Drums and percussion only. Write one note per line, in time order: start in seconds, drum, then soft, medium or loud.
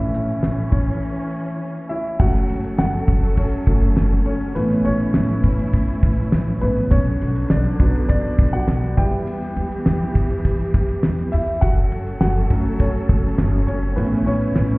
0.14 closed hi-hat medium
0.29 closed hi-hat soft
0.43 snare loud
0.43 closed hi-hat medium
0.72 kick medium
0.72 closed hi-hat medium
2.19 kick loud
2.19 crash medium
2.34 snare soft
2.49 ride medium
2.64 ride soft
2.78 snare loud
2.78 ride medium
3.08 kick medium
3.08 ride medium
3.23 ride soft
3.37 kick medium
3.37 ride medium
3.52 ride soft
3.67 kick loud
3.67 ride medium
3.82 ride soft
3.97 snare loud
3.97 ride medium
4.26 ride medium
4.41 ride soft
4.56 ride medium
4.70 snare soft
4.85 ride medium
5.00 ride soft
5.14 snare loud
5.14 ride medium
5.29 ride soft
5.44 kick medium
5.44 ride medium
5.59 ride soft
5.73 kick medium
5.73 ride medium
5.88 ride soft
6.03 kick loud
6.03 ride medium
6.17 ride soft
6.32 snare loud
6.32 ride medium
6.47 ride soft
6.61 ride medium
6.76 ride soft
6.91 kick loud
6.91 ride medium
7.06 snare soft
7.06 ride soft
7.22 ride medium
7.36 ride soft
7.50 snare loud
7.50 ride medium
7.80 kick medium
7.80 ride medium
7.95 ride soft
8.09 kick medium
8.09 ride medium
8.25 ride soft
8.39 kick loud
8.39 ride medium
8.53 ride soft
8.68 snare loud
8.68 ride medium
8.97 kick loud
8.97 ride medium
9.12 ride soft
9.27 ride medium
9.42 snare soft
9.42 ride soft
9.57 ride medium
9.72 ride soft
9.86 snare loud
9.86 ride medium
10.15 kick medium
10.15 ride medium
10.30 ride soft
10.45 kick medium
10.45 ride medium
10.60 ride soft
10.74 kick medium
10.74 ride medium
10.89 ride soft
11.03 snare loud
11.03 ride medium
11.18 ride soft
11.33 open hi-hat medium
11.33 ride medium
11.48 ride soft
11.62 kick loud
11.62 hi-hat pedal medium
11.62 ride medium
11.77 ride soft
11.92 ride medium
12.07 ride soft
12.21 snare loud
12.21 ride medium
12.36 ride soft
12.50 kick medium
12.50 ride medium
12.65 ride soft
12.79 kick medium
12.79 ride medium
12.94 ride soft
13.09 kick loud
13.09 ride medium
13.24 ride soft
13.38 snare loud
13.38 ride medium
13.53 ride soft
13.68 ride medium
13.82 ride soft
13.97 ride medium
14.12 ride soft
14.27 ride medium
14.42 ride soft
14.56 snare loud
14.56 ride medium
14.70 ride soft